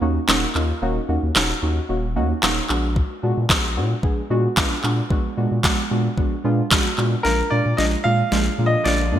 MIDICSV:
0, 0, Header, 1, 6, 480
1, 0, Start_track
1, 0, Tempo, 535714
1, 735, Time_signature, 4, 2, 24, 8
1, 8238, End_track
2, 0, Start_track
2, 0, Title_t, "Grand piano"
2, 0, Program_c, 0, 0
2, 6480, Note_on_c, 0, 70, 87
2, 6723, Note_on_c, 0, 74, 79
2, 6735, Note_off_c, 0, 70, 0
2, 6963, Note_on_c, 0, 75, 85
2, 6977, Note_off_c, 0, 74, 0
2, 7019, Note_off_c, 0, 75, 0
2, 7202, Note_on_c, 0, 77, 93
2, 7733, Note_off_c, 0, 77, 0
2, 7761, Note_on_c, 0, 75, 84
2, 7923, Note_on_c, 0, 74, 81
2, 7933, Note_off_c, 0, 75, 0
2, 8238, Note_off_c, 0, 74, 0
2, 8238, End_track
3, 0, Start_track
3, 0, Title_t, "Synth stab"
3, 0, Program_c, 1, 62
3, 11, Note_on_c, 1, 58, 116
3, 12, Note_on_c, 1, 61, 104
3, 14, Note_on_c, 1, 63, 106
3, 15, Note_on_c, 1, 66, 121
3, 172, Note_off_c, 1, 58, 0
3, 173, Note_off_c, 1, 61, 0
3, 173, Note_off_c, 1, 63, 0
3, 174, Note_off_c, 1, 66, 0
3, 250, Note_on_c, 1, 58, 116
3, 253, Note_on_c, 1, 61, 105
3, 253, Note_on_c, 1, 63, 110
3, 255, Note_on_c, 1, 66, 123
3, 411, Note_off_c, 1, 58, 0
3, 413, Note_off_c, 1, 61, 0
3, 413, Note_off_c, 1, 63, 0
3, 414, Note_off_c, 1, 66, 0
3, 493, Note_on_c, 1, 58, 92
3, 494, Note_on_c, 1, 61, 82
3, 496, Note_on_c, 1, 63, 82
3, 496, Note_on_c, 1, 65, 95
3, 653, Note_off_c, 1, 58, 0
3, 653, Note_off_c, 1, 61, 0
3, 654, Note_off_c, 1, 63, 0
3, 655, Note_off_c, 1, 65, 0
3, 733, Note_on_c, 1, 58, 115
3, 734, Note_on_c, 1, 61, 106
3, 735, Note_on_c, 1, 63, 107
3, 737, Note_on_c, 1, 66, 127
3, 893, Note_off_c, 1, 58, 0
3, 893, Note_off_c, 1, 61, 0
3, 894, Note_off_c, 1, 63, 0
3, 895, Note_off_c, 1, 66, 0
3, 972, Note_on_c, 1, 58, 89
3, 973, Note_on_c, 1, 61, 81
3, 975, Note_on_c, 1, 63, 84
3, 977, Note_on_c, 1, 66, 102
3, 1132, Note_off_c, 1, 58, 0
3, 1133, Note_off_c, 1, 61, 0
3, 1134, Note_off_c, 1, 63, 0
3, 1135, Note_off_c, 1, 66, 0
3, 1211, Note_on_c, 1, 58, 90
3, 1213, Note_on_c, 1, 61, 84
3, 1214, Note_on_c, 1, 63, 80
3, 1216, Note_on_c, 1, 66, 98
3, 1372, Note_off_c, 1, 58, 0
3, 1373, Note_off_c, 1, 61, 0
3, 1374, Note_off_c, 1, 63, 0
3, 1374, Note_off_c, 1, 66, 0
3, 1453, Note_on_c, 1, 58, 88
3, 1454, Note_on_c, 1, 61, 81
3, 1455, Note_on_c, 1, 63, 83
3, 1457, Note_on_c, 1, 66, 100
3, 1613, Note_off_c, 1, 58, 0
3, 1613, Note_off_c, 1, 61, 0
3, 1614, Note_off_c, 1, 63, 0
3, 1615, Note_off_c, 1, 66, 0
3, 1692, Note_on_c, 1, 58, 90
3, 1694, Note_on_c, 1, 61, 83
3, 1695, Note_on_c, 1, 63, 80
3, 1697, Note_on_c, 1, 66, 100
3, 1852, Note_off_c, 1, 58, 0
3, 1853, Note_off_c, 1, 61, 0
3, 1854, Note_off_c, 1, 63, 0
3, 1855, Note_off_c, 1, 66, 0
3, 1933, Note_on_c, 1, 58, 114
3, 1935, Note_on_c, 1, 61, 105
3, 1936, Note_on_c, 1, 63, 102
3, 1937, Note_on_c, 1, 66, 127
3, 2093, Note_off_c, 1, 58, 0
3, 2094, Note_off_c, 1, 61, 0
3, 2094, Note_off_c, 1, 63, 0
3, 2095, Note_off_c, 1, 66, 0
3, 2172, Note_on_c, 1, 58, 113
3, 2173, Note_on_c, 1, 61, 105
3, 2175, Note_on_c, 1, 63, 104
3, 2176, Note_on_c, 1, 66, 127
3, 2332, Note_off_c, 1, 58, 0
3, 2333, Note_off_c, 1, 61, 0
3, 2334, Note_off_c, 1, 63, 0
3, 2335, Note_off_c, 1, 66, 0
3, 2411, Note_on_c, 1, 56, 94
3, 2413, Note_on_c, 1, 59, 84
3, 2414, Note_on_c, 1, 62, 88
3, 2416, Note_on_c, 1, 66, 104
3, 2803, Note_off_c, 1, 56, 0
3, 2804, Note_off_c, 1, 59, 0
3, 2804, Note_off_c, 1, 62, 0
3, 2805, Note_off_c, 1, 66, 0
3, 2891, Note_on_c, 1, 56, 92
3, 2892, Note_on_c, 1, 59, 81
3, 2894, Note_on_c, 1, 62, 85
3, 2894, Note_on_c, 1, 66, 104
3, 3052, Note_off_c, 1, 56, 0
3, 3052, Note_off_c, 1, 59, 0
3, 3053, Note_off_c, 1, 62, 0
3, 3054, Note_off_c, 1, 66, 0
3, 3133, Note_on_c, 1, 56, 92
3, 3135, Note_on_c, 1, 59, 84
3, 3136, Note_on_c, 1, 62, 83
3, 3138, Note_on_c, 1, 66, 97
3, 3293, Note_off_c, 1, 56, 0
3, 3294, Note_off_c, 1, 59, 0
3, 3294, Note_off_c, 1, 62, 0
3, 3295, Note_off_c, 1, 66, 0
3, 3373, Note_on_c, 1, 56, 87
3, 3376, Note_on_c, 1, 59, 81
3, 3378, Note_on_c, 1, 62, 81
3, 3379, Note_on_c, 1, 66, 94
3, 3533, Note_off_c, 1, 56, 0
3, 3534, Note_off_c, 1, 59, 0
3, 3535, Note_off_c, 1, 62, 0
3, 3536, Note_off_c, 1, 66, 0
3, 3613, Note_on_c, 1, 56, 89
3, 3614, Note_on_c, 1, 59, 82
3, 3615, Note_on_c, 1, 62, 79
3, 3617, Note_on_c, 1, 68, 93
3, 3773, Note_off_c, 1, 56, 0
3, 3773, Note_off_c, 1, 59, 0
3, 3774, Note_off_c, 1, 62, 0
3, 3775, Note_off_c, 1, 68, 0
3, 3854, Note_on_c, 1, 56, 116
3, 3854, Note_on_c, 1, 59, 105
3, 3856, Note_on_c, 1, 62, 105
3, 3857, Note_on_c, 1, 66, 127
3, 4013, Note_off_c, 1, 56, 0
3, 4013, Note_off_c, 1, 59, 0
3, 4014, Note_off_c, 1, 62, 0
3, 4015, Note_off_c, 1, 66, 0
3, 4092, Note_on_c, 1, 56, 117
3, 4093, Note_on_c, 1, 59, 105
3, 4094, Note_on_c, 1, 62, 107
3, 4097, Note_on_c, 1, 65, 127
3, 4252, Note_off_c, 1, 56, 0
3, 4253, Note_off_c, 1, 59, 0
3, 4253, Note_off_c, 1, 62, 0
3, 4255, Note_off_c, 1, 65, 0
3, 4335, Note_on_c, 1, 56, 90
3, 4336, Note_on_c, 1, 59, 85
3, 4338, Note_on_c, 1, 62, 85
3, 4340, Note_on_c, 1, 66, 105
3, 4494, Note_off_c, 1, 56, 0
3, 4494, Note_off_c, 1, 59, 0
3, 4495, Note_off_c, 1, 62, 0
3, 4496, Note_off_c, 1, 66, 0
3, 4571, Note_on_c, 1, 56, 114
3, 4573, Note_on_c, 1, 59, 108
3, 4574, Note_on_c, 1, 62, 104
3, 4576, Note_on_c, 1, 66, 127
3, 4732, Note_off_c, 1, 56, 0
3, 4733, Note_off_c, 1, 59, 0
3, 4733, Note_off_c, 1, 62, 0
3, 4734, Note_off_c, 1, 66, 0
3, 4812, Note_on_c, 1, 56, 90
3, 4813, Note_on_c, 1, 59, 82
3, 4814, Note_on_c, 1, 62, 83
3, 4816, Note_on_c, 1, 66, 103
3, 4972, Note_off_c, 1, 56, 0
3, 4973, Note_off_c, 1, 59, 0
3, 4973, Note_off_c, 1, 62, 0
3, 4974, Note_off_c, 1, 66, 0
3, 5049, Note_on_c, 1, 56, 92
3, 5051, Note_on_c, 1, 59, 83
3, 5052, Note_on_c, 1, 62, 82
3, 5054, Note_on_c, 1, 66, 103
3, 5211, Note_off_c, 1, 56, 0
3, 5212, Note_off_c, 1, 59, 0
3, 5212, Note_off_c, 1, 62, 0
3, 5213, Note_off_c, 1, 66, 0
3, 5292, Note_on_c, 1, 56, 86
3, 5292, Note_on_c, 1, 59, 81
3, 5294, Note_on_c, 1, 62, 79
3, 5296, Note_on_c, 1, 66, 101
3, 5452, Note_off_c, 1, 56, 0
3, 5452, Note_off_c, 1, 59, 0
3, 5453, Note_off_c, 1, 62, 0
3, 5454, Note_off_c, 1, 66, 0
3, 5532, Note_on_c, 1, 56, 89
3, 5532, Note_on_c, 1, 59, 81
3, 5535, Note_on_c, 1, 62, 80
3, 5535, Note_on_c, 1, 66, 99
3, 5692, Note_off_c, 1, 56, 0
3, 5693, Note_off_c, 1, 59, 0
3, 5694, Note_off_c, 1, 62, 0
3, 5694, Note_off_c, 1, 66, 0
3, 5770, Note_on_c, 1, 56, 114
3, 5772, Note_on_c, 1, 59, 107
3, 5773, Note_on_c, 1, 62, 101
3, 5776, Note_on_c, 1, 65, 123
3, 5931, Note_off_c, 1, 56, 0
3, 5932, Note_off_c, 1, 59, 0
3, 5933, Note_off_c, 1, 62, 0
3, 5934, Note_off_c, 1, 65, 0
3, 6009, Note_on_c, 1, 56, 117
3, 6011, Note_on_c, 1, 59, 101
3, 6013, Note_on_c, 1, 62, 104
3, 6014, Note_on_c, 1, 66, 127
3, 6171, Note_off_c, 1, 56, 0
3, 6172, Note_off_c, 1, 59, 0
3, 6173, Note_off_c, 1, 62, 0
3, 6173, Note_off_c, 1, 66, 0
3, 6251, Note_on_c, 1, 56, 89
3, 6251, Note_on_c, 1, 59, 81
3, 6253, Note_on_c, 1, 62, 84
3, 6256, Note_on_c, 1, 66, 96
3, 6412, Note_off_c, 1, 56, 0
3, 6412, Note_off_c, 1, 59, 0
3, 6413, Note_off_c, 1, 62, 0
3, 6414, Note_off_c, 1, 66, 0
3, 6492, Note_on_c, 1, 56, 96
3, 6492, Note_on_c, 1, 58, 90
3, 6494, Note_on_c, 1, 62, 86
3, 6495, Note_on_c, 1, 65, 104
3, 6652, Note_off_c, 1, 56, 0
3, 6653, Note_off_c, 1, 58, 0
3, 6653, Note_off_c, 1, 62, 0
3, 6654, Note_off_c, 1, 65, 0
3, 6731, Note_on_c, 1, 56, 75
3, 6732, Note_on_c, 1, 58, 70
3, 6734, Note_on_c, 1, 62, 69
3, 6736, Note_on_c, 1, 65, 86
3, 6892, Note_off_c, 1, 56, 0
3, 6892, Note_off_c, 1, 58, 0
3, 6893, Note_off_c, 1, 62, 0
3, 6894, Note_off_c, 1, 65, 0
3, 6969, Note_on_c, 1, 56, 76
3, 6970, Note_on_c, 1, 58, 68
3, 6972, Note_on_c, 1, 62, 69
3, 6974, Note_on_c, 1, 65, 83
3, 7131, Note_off_c, 1, 56, 0
3, 7132, Note_off_c, 1, 58, 0
3, 7132, Note_off_c, 1, 62, 0
3, 7133, Note_off_c, 1, 65, 0
3, 7211, Note_on_c, 1, 56, 70
3, 7212, Note_on_c, 1, 58, 69
3, 7214, Note_on_c, 1, 62, 67
3, 7215, Note_on_c, 1, 65, 81
3, 7372, Note_off_c, 1, 56, 0
3, 7372, Note_off_c, 1, 58, 0
3, 7373, Note_off_c, 1, 62, 0
3, 7374, Note_off_c, 1, 65, 0
3, 7451, Note_on_c, 1, 56, 94
3, 7452, Note_on_c, 1, 58, 84
3, 7454, Note_on_c, 1, 62, 87
3, 7455, Note_on_c, 1, 65, 102
3, 7612, Note_off_c, 1, 56, 0
3, 7613, Note_off_c, 1, 58, 0
3, 7613, Note_off_c, 1, 62, 0
3, 7614, Note_off_c, 1, 65, 0
3, 7693, Note_on_c, 1, 56, 75
3, 7694, Note_on_c, 1, 58, 70
3, 7695, Note_on_c, 1, 62, 70
3, 7697, Note_on_c, 1, 65, 81
3, 7853, Note_off_c, 1, 56, 0
3, 7854, Note_off_c, 1, 58, 0
3, 7854, Note_off_c, 1, 62, 0
3, 7855, Note_off_c, 1, 65, 0
3, 7932, Note_on_c, 1, 56, 74
3, 7933, Note_on_c, 1, 58, 70
3, 7935, Note_on_c, 1, 62, 70
3, 7937, Note_on_c, 1, 65, 88
3, 8092, Note_off_c, 1, 56, 0
3, 8093, Note_off_c, 1, 58, 0
3, 8094, Note_off_c, 1, 62, 0
3, 8095, Note_off_c, 1, 65, 0
3, 8172, Note_on_c, 1, 56, 76
3, 8174, Note_on_c, 1, 58, 68
3, 8174, Note_on_c, 1, 62, 69
3, 8176, Note_on_c, 1, 65, 85
3, 8238, Note_off_c, 1, 56, 0
3, 8238, Note_off_c, 1, 58, 0
3, 8238, Note_off_c, 1, 62, 0
3, 8238, Note_off_c, 1, 65, 0
3, 8238, End_track
4, 0, Start_track
4, 0, Title_t, "Ambient pad"
4, 0, Program_c, 2, 92
4, 6492, Note_on_c, 2, 53, 67
4, 6492, Note_on_c, 2, 56, 68
4, 6493, Note_on_c, 2, 58, 70
4, 6493, Note_on_c, 2, 65, 81
4, 6494, Note_on_c, 2, 50, 74
4, 8238, Note_off_c, 2, 50, 0
4, 8238, Note_off_c, 2, 53, 0
4, 8238, Note_off_c, 2, 56, 0
4, 8238, Note_off_c, 2, 58, 0
4, 8238, Note_off_c, 2, 65, 0
4, 8238, End_track
5, 0, Start_track
5, 0, Title_t, "Sub bass"
5, 0, Program_c, 3, 38
5, 11, Note_on_c, 3, 39, 102
5, 169, Note_off_c, 3, 39, 0
5, 252, Note_on_c, 3, 27, 96
5, 409, Note_off_c, 3, 27, 0
5, 493, Note_on_c, 3, 39, 97
5, 650, Note_off_c, 3, 39, 0
5, 732, Note_on_c, 3, 27, 107
5, 889, Note_off_c, 3, 27, 0
5, 974, Note_on_c, 3, 39, 94
5, 1057, Note_off_c, 3, 39, 0
5, 1102, Note_on_c, 3, 39, 101
5, 1175, Note_off_c, 3, 39, 0
5, 1216, Note_on_c, 3, 27, 98
5, 1372, Note_off_c, 3, 27, 0
5, 1456, Note_on_c, 3, 39, 104
5, 1612, Note_off_c, 3, 39, 0
5, 1696, Note_on_c, 3, 27, 103
5, 1935, Note_on_c, 3, 39, 104
5, 1949, Note_off_c, 3, 27, 0
5, 2091, Note_off_c, 3, 39, 0
5, 2177, Note_on_c, 3, 27, 97
5, 2332, Note_off_c, 3, 27, 0
5, 2417, Note_on_c, 3, 34, 106
5, 2728, Note_off_c, 3, 34, 0
5, 2896, Note_on_c, 3, 46, 105
5, 2978, Note_off_c, 3, 46, 0
5, 3024, Note_on_c, 3, 46, 94
5, 3096, Note_off_c, 3, 46, 0
5, 3132, Note_on_c, 3, 34, 103
5, 3376, Note_on_c, 3, 46, 102
5, 3389, Note_off_c, 3, 34, 0
5, 3532, Note_off_c, 3, 46, 0
5, 3613, Note_on_c, 3, 34, 102
5, 3770, Note_off_c, 3, 34, 0
5, 3855, Note_on_c, 3, 46, 97
5, 4011, Note_off_c, 3, 46, 0
5, 4097, Note_on_c, 3, 34, 94
5, 4252, Note_off_c, 3, 34, 0
5, 4334, Note_on_c, 3, 46, 103
5, 4491, Note_off_c, 3, 46, 0
5, 4574, Note_on_c, 3, 34, 109
5, 4730, Note_off_c, 3, 34, 0
5, 4816, Note_on_c, 3, 46, 100
5, 4898, Note_off_c, 3, 46, 0
5, 4943, Note_on_c, 3, 46, 95
5, 5016, Note_off_c, 3, 46, 0
5, 5052, Note_on_c, 3, 34, 99
5, 5209, Note_off_c, 3, 34, 0
5, 5297, Note_on_c, 3, 46, 90
5, 5452, Note_off_c, 3, 46, 0
5, 5533, Note_on_c, 3, 34, 104
5, 5690, Note_off_c, 3, 34, 0
5, 5775, Note_on_c, 3, 46, 99
5, 5931, Note_off_c, 3, 46, 0
5, 6017, Note_on_c, 3, 34, 105
5, 6173, Note_off_c, 3, 34, 0
5, 6255, Note_on_c, 3, 46, 98
5, 6411, Note_off_c, 3, 46, 0
5, 6494, Note_on_c, 3, 34, 102
5, 6651, Note_off_c, 3, 34, 0
5, 6734, Note_on_c, 3, 46, 94
5, 6817, Note_off_c, 3, 46, 0
5, 6861, Note_on_c, 3, 46, 101
5, 6935, Note_off_c, 3, 46, 0
5, 6974, Note_on_c, 3, 34, 101
5, 7130, Note_off_c, 3, 34, 0
5, 7215, Note_on_c, 3, 46, 95
5, 7371, Note_off_c, 3, 46, 0
5, 7453, Note_on_c, 3, 34, 104
5, 7610, Note_off_c, 3, 34, 0
5, 7693, Note_on_c, 3, 46, 105
5, 7849, Note_off_c, 3, 46, 0
5, 7933, Note_on_c, 3, 34, 100
5, 8173, Note_on_c, 3, 46, 92
5, 8187, Note_off_c, 3, 34, 0
5, 8238, Note_off_c, 3, 46, 0
5, 8238, End_track
6, 0, Start_track
6, 0, Title_t, "Drums"
6, 255, Note_on_c, 9, 39, 104
6, 256, Note_on_c, 9, 38, 87
6, 345, Note_off_c, 9, 39, 0
6, 346, Note_off_c, 9, 38, 0
6, 494, Note_on_c, 9, 39, 62
6, 583, Note_off_c, 9, 39, 0
6, 1216, Note_on_c, 9, 39, 108
6, 1217, Note_on_c, 9, 38, 81
6, 1305, Note_off_c, 9, 39, 0
6, 1306, Note_off_c, 9, 38, 0
6, 2176, Note_on_c, 9, 39, 105
6, 2177, Note_on_c, 9, 38, 87
6, 2266, Note_off_c, 9, 38, 0
6, 2266, Note_off_c, 9, 39, 0
6, 2413, Note_on_c, 9, 39, 60
6, 2503, Note_off_c, 9, 39, 0
6, 2655, Note_on_c, 9, 36, 105
6, 2744, Note_off_c, 9, 36, 0
6, 3132, Note_on_c, 9, 36, 113
6, 3135, Note_on_c, 9, 39, 107
6, 3136, Note_on_c, 9, 38, 83
6, 3222, Note_off_c, 9, 36, 0
6, 3224, Note_off_c, 9, 39, 0
6, 3225, Note_off_c, 9, 38, 0
6, 3613, Note_on_c, 9, 36, 99
6, 3703, Note_off_c, 9, 36, 0
6, 4095, Note_on_c, 9, 39, 108
6, 4096, Note_on_c, 9, 38, 88
6, 4097, Note_on_c, 9, 36, 109
6, 4185, Note_off_c, 9, 38, 0
6, 4185, Note_off_c, 9, 39, 0
6, 4187, Note_off_c, 9, 36, 0
6, 4333, Note_on_c, 9, 39, 61
6, 4423, Note_off_c, 9, 39, 0
6, 4574, Note_on_c, 9, 36, 104
6, 4664, Note_off_c, 9, 36, 0
6, 5052, Note_on_c, 9, 36, 117
6, 5055, Note_on_c, 9, 39, 101
6, 5056, Note_on_c, 9, 38, 88
6, 5142, Note_off_c, 9, 36, 0
6, 5144, Note_off_c, 9, 39, 0
6, 5145, Note_off_c, 9, 38, 0
6, 5533, Note_on_c, 9, 36, 96
6, 5623, Note_off_c, 9, 36, 0
6, 6015, Note_on_c, 9, 39, 113
6, 6016, Note_on_c, 9, 38, 84
6, 6018, Note_on_c, 9, 36, 106
6, 6105, Note_off_c, 9, 39, 0
6, 6106, Note_off_c, 9, 38, 0
6, 6107, Note_off_c, 9, 36, 0
6, 6253, Note_on_c, 9, 39, 59
6, 6342, Note_off_c, 9, 39, 0
6, 6494, Note_on_c, 9, 38, 54
6, 6584, Note_off_c, 9, 38, 0
6, 6975, Note_on_c, 9, 38, 55
6, 7065, Note_off_c, 9, 38, 0
6, 7454, Note_on_c, 9, 38, 55
6, 7544, Note_off_c, 9, 38, 0
6, 7934, Note_on_c, 9, 38, 58
6, 8024, Note_off_c, 9, 38, 0
6, 8238, End_track
0, 0, End_of_file